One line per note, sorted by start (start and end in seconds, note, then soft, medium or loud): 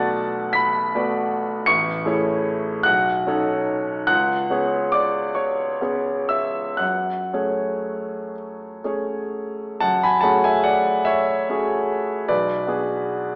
0.00 1.71 B1 medium
0.00 0.90 A3 soft
0.00 0.91 B3 soft
0.00 0.91 F#4 soft
0.00 0.91 D5 soft
0.00 1.71 F#5 medium
0.00 0.52 A5 medium
0.00 1.72 F#6 medium
0.00 0.56 A6 medium
0.53 1.65 B5 medium
0.53 1.67 B6 medium
0.95 1.66 A3 soft
0.95 1.66 B3 soft
0.95 1.66 F#4 soft
0.95 1.66 D5 soft
1.66 2.05 A1 medium
1.66 2.83 C#6 medium
1.66 2.86 C#7 loud
2.05 2.83 A3 soft
2.05 2.83 E4 soft
2.05 2.83 G#4 soft
2.05 2.84 C#5 soft
2.83 3.26 B1 medium
2.83 4.04 F#5 medium
2.83 4.06 F#6 medium
3.27 4.04 C#4 soft
3.27 4.04 D#4 soft
3.27 4.05 A4 soft
3.27 4.05 C#5 soft
4.07 4.49 C#2 medium
4.07 4.89 F#5 medium
4.07 4.93 F#6 medium
4.50 5.79 B3 soft
4.50 5.79 C#4 soft
4.50 5.79 G#4 soft
4.50 5.35 C#5 soft
4.92 5.35 D5 medium
4.92 5.37 D6 medium
5.35 5.81 C#5 soft
5.35 6.29 C#6 medium
5.81 6.77 B3 soft
5.81 6.77 C#4 soft
5.81 6.77 G#4 soft
5.81 6.77 C#5 soft
6.29 6.77 E5 soft
6.29 6.80 E6 medium
6.77 7.31 F#2 soft
6.77 8.29 F#5 soft
6.77 8.33 F#6 medium
7.33 8.81 A3 soft
7.33 8.81 C#4 soft
7.33 8.81 G#4 soft
7.33 8.81 C#5 soft
8.84 9.78 A3 soft
8.84 9.78 C#4 soft
8.84 9.79 G#4 soft
8.84 9.79 C#5 soft
9.80 10.24 F#2 soft
9.80 10.02 F#5 medium
9.80 10.03 A5 medium
10.03 10.24 G#5 medium
10.03 10.25 B5 medium
10.21 11.44 A3 soft
10.21 11.45 C#4 soft
10.21 11.45 F#4 soft
10.21 11.45 G#4 soft
10.21 10.43 F#5 medium
10.21 10.44 A5 medium
10.44 10.65 E5 soft
10.44 10.66 G#5 medium
10.63 11.04 D5 soft
10.63 11.07 F#5 medium
11.05 12.25 C#5 medium
11.05 12.28 E5 medium
11.49 12.26 A3 soft
11.49 12.26 C#4 soft
11.49 12.27 F#4 soft
11.49 12.27 G#4 soft
12.28 12.67 B1 medium
12.28 13.35 B4 medium
12.28 13.35 D5 medium
12.67 13.35 B3 soft
12.67 13.35 D4 soft
12.67 13.35 F#4 soft
12.67 13.35 G#4 soft